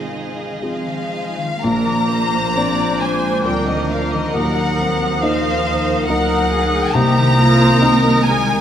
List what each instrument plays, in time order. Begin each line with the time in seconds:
Already playing: felt piano G#2 C4 F4 G#4 D#5, harp G#2 D#3 C4 D#4 F4, cello section D#3, viola section C4 D#4, violin section G#4 D#5 F5
0.11 harp G#4
0.35 harp F4
0.59 cello section F3, harp C4, felt piano C4 F4 G#4, violin section F5
0.85 harp D#3
1.11 harp C4
1.38 harp D#3
1.62 double bass section A#1, felt piano A#1 A#2, harp A#2, cello section A#3, viola section D4 A#4, violin section A#4 A#5, clarinet C5, flute section D6
1.86 harp F3
2.10 harp D4, viola section D4, violin section C5
2.33 harp F4
2.55 felt piano C4 F4 D5, harp C5, violin section D5, viola section D5
2.77 harp F4
3.00 cello section G#3, harp C5, viola section C5, violin section C5 G#5
3.23 harp F4
3.44 double bass section D2, cello section G3, felt piano C4 F4 D5, harp D4, violin section A#4 G5
3.48 viola section A#4
3.67 cello section D#3, harp F3, violin section D#5
3.90 cello section F3, harp D4, violin section F5
4.12 cello section D#3, harp F3, violin section D#5
4.33 double bass section D#2, felt piano D#2 A#2, cello section F#3, viola section D#4 A#4, clarinet A#4, violin section F#5, flute section D#6
4.57 harp A#3
4.78 viola section C4, harp D#4
5.21 cello section F3, felt piano A#3 D#4 D#5, viola section D#4, harp A#4, violin section C5 F5
5.66 viola section D#4, harp A#4
6.05 double bass section D2, cello section F#3, harp D#4, felt piano D#4, violin section A#4 F#5, clarinet A#4, flute section D#6
6.09 felt piano A#3 D#5, viola section D#4
6.30 harp A#3
6.51 harp D#4, viola section D#4, violin section G#4
6.73 harp A#3
6.94 double bass section C2, felt piano C2 C3, harp C3, cello section A#3, viola section D#4, violin section G4 A#5, clarinet C5, flute section D#6
7.16 harp D#3
7.39 harp C4, viola section F4, violin section A#4
7.60 harp D#4
7.80 felt piano C4 D#4 D#5, viola section D#4, harp C5
8.02 harp D#4
8.24 cello section G#3, violin section G#5
8.48 harp D#4